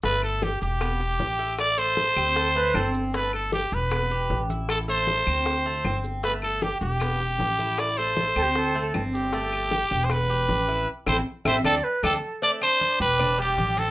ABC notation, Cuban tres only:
X:1
M:4/4
L:1/8
Q:1/4=155
K:G
V:1 name="Cuban tres"
A,2 G2 B, G2 E- | E A,2 C2 A, C2 | A,2 G2 B, G2 E- | E A,2 C2 A, C2 |
A,2 G2 B, G2 E- | E A,2 C2 A, C2 | A,2 G2 B, G2 E | z [A,CE] z [A,CE] [A,CD] z [A,CD] z |
A, D2 G D G,2 C |]